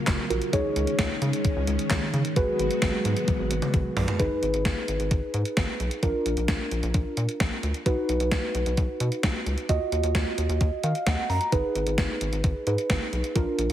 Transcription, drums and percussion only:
0.07 kick, snare, clap, closed hi-hat
0.30 closed hi-hat
0.42 closed hi-hat
0.53 kick, closed hi-hat
0.76 closed hi-hat
0.87 closed hi-hat
0.99 kick, snare, closed hi-hat
1.22 closed hi-hat
1.33 closed hi-hat
1.45 kick, closed hi-hat
1.67 closed hi-hat
1.79 closed hi-hat
1.91 kick, snare, clap, closed hi-hat
2.14 closed hi-hat
2.25 closed hi-hat
2.36 kick, closed hi-hat
2.59 closed hi-hat
2.71 closed hi-hat
2.82 kick, snare, closed hi-hat
3.05 closed hi-hat
3.17 closed hi-hat
3.28 kick, closed hi-hat, high tom
3.51 closed hi-hat
3.62 closed hi-hat, mid tom
3.74 kick, closed hi-hat
3.97 floor tom, open hi-hat
4.08 closed hi-hat, floor tom
4.20 kick, closed hi-hat
4.43 closed hi-hat
4.54 closed hi-hat
4.65 kick, snare, closed hi-hat
4.88 closed hi-hat
5.00 closed hi-hat
5.11 kick, closed hi-hat
5.34 closed hi-hat
5.45 closed hi-hat
5.57 kick, snare, closed hi-hat
5.80 closed hi-hat
5.91 closed hi-hat
6.03 kick, closed hi-hat
6.26 closed hi-hat
6.37 closed hi-hat
6.48 kick, snare, closed hi-hat
6.71 closed hi-hat
6.83 closed hi-hat
6.94 kick, closed hi-hat
7.17 closed hi-hat
7.29 closed hi-hat
7.40 kick, snare, closed hi-hat
7.63 closed hi-hat
7.74 closed hi-hat
7.86 kick, closed hi-hat
8.09 closed hi-hat
8.20 closed hi-hat
8.32 kick, snare, closed hi-hat
8.55 closed hi-hat
8.66 closed hi-hat
8.77 kick, closed hi-hat
9.00 closed hi-hat
9.12 closed hi-hat
9.23 kick, snare, closed hi-hat
9.46 closed hi-hat
9.58 closed hi-hat
9.69 kick, closed hi-hat
9.92 closed hi-hat
10.04 closed hi-hat
10.15 kick, snare, closed hi-hat
10.38 closed hi-hat
10.50 closed hi-hat
10.61 kick, closed hi-hat
10.84 closed hi-hat
10.95 closed hi-hat
11.07 kick, snare, closed hi-hat
11.30 open hi-hat
11.41 closed hi-hat
11.52 kick, closed hi-hat
11.75 closed hi-hat
11.87 closed hi-hat
11.98 kick, snare, closed hi-hat
12.21 closed hi-hat
12.33 closed hi-hat
12.44 kick, closed hi-hat
12.67 closed hi-hat
12.78 closed hi-hat
12.90 kick, snare, closed hi-hat
13.13 closed hi-hat
13.24 closed hi-hat
13.36 kick, closed hi-hat
13.59 closed hi-hat

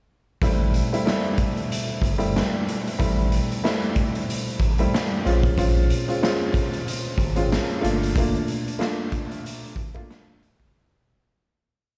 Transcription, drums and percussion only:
0.42 kick, closed hi-hat
0.74 closed hi-hat
0.94 closed hi-hat
1.07 snare
1.24 closed hi-hat
1.38 kick, closed hi-hat
1.57 closed hi-hat
1.72 closed hi-hat
2.02 kick, closed hi-hat
2.20 closed hi-hat
2.36 snare
2.69 closed hi-hat
2.87 closed hi-hat
3.00 kick, closed hi-hat
3.19 closed hi-hat
3.32 closed hi-hat
3.52 closed hi-hat
3.65 snare
3.82 closed hi-hat
3.96 kick, closed hi-hat
4.15 closed hi-hat
4.30 closed hi-hat
4.49 closed hi-hat
4.60 kick, closed hi-hat
4.78 closed hi-hat
4.94 snare
5.11 closed hi-hat
5.27 closed hi-hat
5.43 kick, closed hi-hat
5.58 kick, closed hi-hat
5.77 closed hi-hat
5.90 closed hi-hat
6.10 closed hi-hat
6.23 snare
6.40 closed hi-hat
6.54 kick, closed hi-hat
6.73 closed hi-hat
6.88 closed hi-hat
7.18 kick, closed hi-hat
7.36 closed hi-hat
7.52 snare
7.69 closed hi-hat
7.84 closed hi-hat
8.03 closed hi-hat
8.16 kick, closed hi-hat
8.35 closed hi-hat
8.48 closed hi-hat
8.68 closed hi-hat
8.81 snare
9.12 kick, closed hi-hat
9.32 closed hi-hat
9.46 closed hi-hat
9.65 closed hi-hat
9.76 kick, closed hi-hat
9.94 kick, closed hi-hat
10.11 snare
10.43 closed hi-hat
10.60 kick, closed hi-hat

